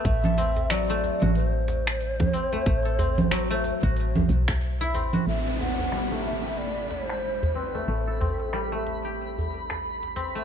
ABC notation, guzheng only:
X:1
M:4/4
L:1/16
Q:"Swing 16ths" 1/4=92
K:Ador
V:1 name="Guzheng"
A, A C z F, A,2 F z6 C A, | A, A C z F, A,2 F z4 z E C F | A, A C z G, A,2 G z6 C A, | A, A C z G, A,2 G z6 C A, |]